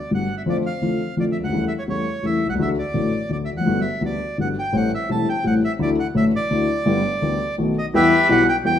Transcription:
Already playing: D5
0.11 G1 G2 D3 G3 B3 F#4 F#5
0.37 E5
0.46 F2 D3 F3 A3 C4 F4 D5
0.66 F5
0.82 F2 D3 F3 A3 C4 F4
1.17 F2 D3 F3 A3 C4 F4 D5
1.32 E5
1.40 C#2 D2
1.44 F#5
1.49 D#2 E2 C#3 E3 G3 E4
1.53 A3
1.68 E5
1.79 C#5
1.88 E2 C#3 E3 G3 A3 E4 C#5
2.23 E2 C#3 E3 G3 A3 E4 E5
2.45 B1
2.49 C2 F#5
2.55 C#2 D3
2.59 D2 F#3 A3 F#4 E5
2.79 D5
2.94 A1 A2 D3 F#3 A3 F#4
3.29 D2 D3 F#3 A3 F#4 D5
3.45 E5
3.52 E2
3.57 F2 F#5
3.61 F#2
3.66 G1 G2 D3 G3 B3 F#4
3.81 E5
4.01 D2 D3 G3 B3 F#4
4.06 D5
4.38 G1 G2 D3 G3 B3 F#4 F#5
4.59 G5
4.73 A1 A2 C3 G3 A3 E4 F#5
4.95 E5
5.09 E1 E2 C3 G3 A3 E4 A5
5.29 G5
5.44 A1 A2 C3 G3 A3 E4 F#5
5.65 E5
5.79 D2 D3 F#3 A3 E4 D5
6.00 F#5
6.15 A1 A2 D3 F#3 A3 E4 E5
6.36 D5
6.51 D2 D3 F#3 A3 E4
6.86 G1 G2 D3 G3 B3 G4
7.22 D2 D3 G3 B3 G4
7.58 B1 B2 D#3 A3 B3 F#4
7.78 D#5
7.94 E2 E3 G3 B3 G4 B4 E5
8.29 B1 B2 E3 G3 B3 G4 F#5
8.49 G5
8.64 E2 E3 G3 B3 G4 G5

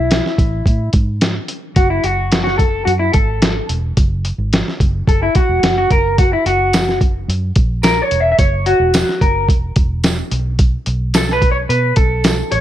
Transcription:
Already playing: B1 E4
0.11 snare, closed hi-hat
0.26 snare
0.38 A1, kick, closed hi-hat
0.66 A2, kick, closed hi-hat
0.93 G#2, kick, closed hi-hat
1.21 snare, closed hi-hat
1.48 closed hi-hat
1.76 F#1 F#4, kick, closed hi-hat
1.90 E4
2.04 F#1 F#4, closed hi-hat
2.32 snare, closed hi-hat
2.44 F#4, snare
2.58 A4, kick, closed hi-hat
2.85 F#2 F#4, closed hi-hat
2.99 E4
3.13 G#1 A4, kick, closed hi-hat
3.42 snare, closed hi-hat
3.69 E1, closed hi-hat
3.97 F#1, kick, closed hi-hat
4.25 closed hi-hat
4.38 G#1
4.53 snare, closed hi-hat
4.68 snare
4.80 F#1, kick, closed hi-hat
5.07 F#1 A4, kick, closed hi-hat
5.23 E4
5.35 F#4, muted fingered electric bass stroke, kick, closed hi-hat
5.49 E1
5.63 F#1, snare, closed hi-hat
5.78 F#4
5.91 F#1 A#4, kick, closed hi-hat
6.18 F#4, kick, closed hi-hat
6.33 E4
6.46 F#1 F#4, closed hi-hat
6.73 snare, closed hi-hat, tambourine
6.89 snare
7.01 kick, closed hi-hat
7.28 F#2, closed hi-hat
7.56 A#1, kick, closed hi-hat
7.83 A#4, snare, closed hi-hat, tambourine
8.02 C#5
8.11 E1, closed hi-hat
8.20 E5
8.32 E5
8.39 F#1 C#5, kick, closed hi-hat
8.66 F#4, closed hi-hat
8.80 E1
8.94 snare, closed hi-hat, tambourine
9.09 snare
9.21 F#1 A#4, kick, closed hi-hat
9.49 E1, kick, closed hi-hat
9.76 E1, kick, closed hi-hat
10.04 snare, closed hi-hat, tambourine
10.31 B1, closed hi-hat
10.59 kick, closed hi-hat
10.86 B1, closed hi-hat
11.14 A4, snare, closed hi-hat, tambourine
11.29 B4, snare
11.42 kick, closed hi-hat
11.52 C#5
11.69 B2 B4, closed hi-hat
11.96 B1 A4, kick, closed hi-hat
12.24 snare, closed hi-hat, tambourine
12.52 A1 C#5, closed hi-hat

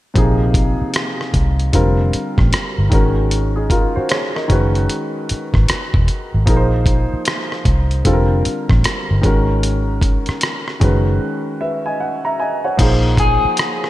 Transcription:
0.14 A#1 C3 F3 A#3 D#4, kick, closed hi-hat
0.18 G#4
0.54 kick, closed hi-hat
0.82 muted fingered electric bass stroke
0.94 cross-stick, closed hi-hat
1.21 cross-stick
1.34 C2, kick, closed hi-hat
1.60 closed hi-hat
1.73 F1 D3 G3 C4 F4 A#4, kick, closed hi-hat
2.13 muted fingered electric bass stroke, closed hi-hat
2.38 A1, kick, cross-stick
2.53 muted fingered electric bass stroke, cross-stick, closed hi-hat
2.78 G1
2.90 G#1 D#3 G#3 C#4 F#4, kick, closed hi-hat
2.94 A#4
3.31 closed hi-hat
3.56 D#4 G#4
3.70 F4 A#4, kick, closed hi-hat
3.96 F#4 C5, muted fingered electric bass stroke
4.09 G#4 C#5, cross-stick, closed hi-hat
4.35 A#4 D#5, cross-stick
4.48 F#1 D#3 G#3 C#4 F#4, kick, closed hi-hat
4.52 B4
4.75 closed hi-hat
4.89 closed hi-hat
5.29 muted fingered electric bass stroke, closed hi-hat
5.54 G#1, kick, cross-stick
5.68 muted fingered electric bass stroke, cross-stick, closed hi-hat
5.94 E1, kick
6.08 closed hi-hat
6.34 G#1
6.46 A#1 F3 A#3 D#4 G#4 A#4, kick, closed hi-hat
6.57 C5
6.86 kick, closed hi-hat
7.13 muted fingered electric bass stroke
7.25 cross-stick, closed hi-hat
7.52 cross-stick
7.65 C2, kick, closed hi-hat
7.91 closed hi-hat
8.05 F1 D3 G3 C4 F4 A4, kick, closed hi-hat
8.13 A#4
8.45 muted fingered electric bass stroke, closed hi-hat
8.69 A1, kick, cross-stick
8.84 muted fingered electric bass stroke, cross-stick, closed hi-hat
9.11 G1
9.21 G#1 D#3 G#3 C#4 F#4, kick, closed hi-hat
9.26 A#4
9.63 closed hi-hat
10.02 kick, closed hi-hat
10.26 muted fingered electric bass stroke, cross-stick, closed hi-hat
10.41 cross-stick, closed hi-hat
10.68 cross-stick
10.80 F#1 D#3 G#3 C#4 F#4 B4, kick, closed hi-hat
11.61 B4 E5
11.86 D#5 G#5
12.00 F#5
12.25 E5 A#5
12.40 D#5 G#5
12.64 C#5 F#5
12.77 A#1 F3 A#3 D#4 G#4, kick, closed hi-hat, crash
12.82 C5
13.17 G#4, kick, closed hi-hat
13.45 muted fingered electric bass stroke
13.57 cross-stick, closed hi-hat
13.84 cross-stick

